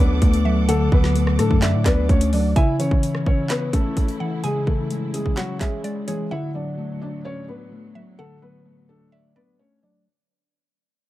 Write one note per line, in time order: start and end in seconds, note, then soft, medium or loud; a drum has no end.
0.00 0.21 D2 loud
0.00 0.22 F#3 medium
0.00 0.20 A3 medium
0.00 0.65 B3 medium
0.00 1.16 D4 medium
0.00 2.52 A4 medium
0.00 0.65 B4 medium
0.00 0.92 D5 loud
0.00 2.52 F#5 medium
0.00 2.52 D6 medium
0.22 0.89 D2 loud
0.22 1.14 A3 loud
0.22 kick medium
0.22 closed hi-hat medium
0.34 closed hi-hat soft
0.45 0.91 F#3 medium
0.45 0.68 E5 medium
0.69 1.86 D3 medium
0.69 0.88 A3 medium
0.69 0.87 A4 loud
0.69 1.58 F#5 loud
0.69 closed hi-hat medium
0.92 1.40 D2 loud
0.92 2.09 F#3 medium
0.92 1.37 B3 medium
0.92 1.36 B4 medium
0.92 kick loud
1.04 snare medium
1.15 2.08 A3 medium
1.15 closed hi-hat medium
1.27 cross-stick medium
1.39 1.50 A2 loud
1.39 1.58 A3 medium
1.39 1.85 D4 medium
1.39 1.58 A4 medium
1.39 cross-stick medium
1.39 closed hi-hat medium
1.51 1.76 F#2 loud
1.51 kick medium
1.62 2.56 D5 loud
1.62 1.85 E5 medium
1.62 snare loud
1.62 clap medium
1.62 closed hi-hat medium
1.74 1.85 A2 loud
1.86 2.08 D2 loud
1.86 2.05 B3 medium
1.86 2.56 D4 medium
1.86 2.04 B4 medium
1.86 2.08 D5 medium
1.86 kick loud
1.86 snare medium
1.86 clap medium
1.86 closed hi-hat medium
2.09 2.54 D2 loud
2.09 2.56 A3 medium
2.09 2.28 C#4 medium
2.09 2.28 C#5 medium
2.09 kick medium
2.09 closed hi-hat soft
2.21 closed hi-hat medium
2.33 2.56 F#3 medium
2.33 2.52 D4 medium
2.33 2.51 D5 medium
2.33 open hi-hat medium
2.56 3.73 C#3 medium
2.56 6.27 C#3 medium
2.56 6.27 E3 medium
2.56 6.27 E4 medium
2.56 2.75 E4 medium
2.56 2.75 E5 loud
2.56 3.46 G#5 loud
2.56 kick loud
2.56 closed hi-hat medium
2.80 3.97 E3 medium
2.80 3.24 C#4 medium
2.80 3.24 C#5 medium
2.80 closed hi-hat medium
2.91 kick loud
3.03 closed hi-hat medium
3.15 cross-stick medium
3.26 3.72 C#4 medium
3.26 3.45 C#4 medium
3.26 3.45 C#5 medium
3.26 kick loud
3.50 3.69 B3 medium
3.50 3.68 B4 medium
3.50 4.67 C#5 loud
3.50 snare loud
3.50 clap medium
3.50 closed hi-hat medium
3.73 4.40 A3 medium
3.73 4.90 C#4 medium
3.73 4.40 A4 medium
3.73 kick loud
3.73 closed hi-hat medium
3.97 kick medium
3.97 closed hi-hat medium
4.08 closed hi-hat soft
4.20 4.66 E3 medium
4.20 4.42 F#5 medium
4.44 5.61 C#3 medium
4.44 4.63 G#3 medium
4.44 4.62 G#4 loud
4.44 5.33 G#5 loud
4.44 closed hi-hat medium
4.67 5.84 E3 medium
4.67 5.12 A3 medium
4.67 5.11 A4 medium
4.67 kick medium
4.90 5.83 G#3 medium
4.90 closed hi-hat medium
5.14 5.33 G#3 medium
5.14 5.60 C#4 loud
5.14 5.32 G#4 medium
5.14 closed hi-hat medium
5.26 kick medium
5.37 5.56 F#3 medium
5.37 5.56 F#4 medium
5.37 6.31 C#5 loud
5.37 5.60 F#5 medium
5.37 snare loud
5.37 clap medium
5.37 closed hi-hat medium
5.61 6.05 G#3 medium
5.61 6.31 C#4 medium
5.61 6.05 G#4 medium
5.61 5.83 E5 medium
5.61 kick loud
5.61 snare medium
5.61 clap medium
5.61 closed hi-hat medium
5.84 6.31 G#3 medium
5.84 6.07 D5 medium
5.84 closed hi-hat medium
6.08 6.31 E3 medium
6.08 6.27 G#3 medium
6.08 6.26 G#4 medium
6.08 6.30 C#5 medium
6.08 closed hi-hat medium
6.31 10.02 D2 medium
6.31 10.02 A2 medium
6.31 7.49 D3 medium
6.31 10.02 F#3 medium
6.31 6.50 E4 medium
6.31 6.50 E5 medium
6.31 7.21 F#5 loud
6.55 7.72 F#3 medium
6.55 6.99 D4 medium
6.55 6.99 D5 medium
6.78 7.71 A3 medium
7.02 7.47 D4 medium
7.02 7.20 D4 medium
7.02 7.20 D5 medium
7.25 7.44 C#4 medium
7.25 7.44 C#5 medium
7.25 8.42 D5 loud
7.48 8.15 B3 medium
7.48 8.66 D4 medium
7.48 8.15 B4 medium
7.72 8.64 A3 medium
7.95 8.41 F#3 medium
7.95 8.18 E5 medium
8.19 9.36 D3 medium
8.19 8.38 A3 medium
8.19 8.37 A4 loud
8.19 9.08 F#5 loud
8.42 9.59 F#3 medium
8.42 8.87 B3 medium
8.42 8.86 B4 medium
8.65 9.58 A3 medium
8.89 9.08 A3 medium
8.89 9.35 D4 medium
8.89 9.07 A4 medium
9.12 10.06 D5 loud
9.12 9.35 E5 medium
9.36 9.55 B3 medium
9.36 10.06 D4 medium
9.36 9.54 B4 medium
9.36 9.58 D5 medium
9.59 10.06 A3 medium
9.59 9.78 C#4 medium
9.59 9.78 C#5 medium
9.83 10.06 F#3 medium
9.83 10.02 D4 medium
9.83 10.01 D5 medium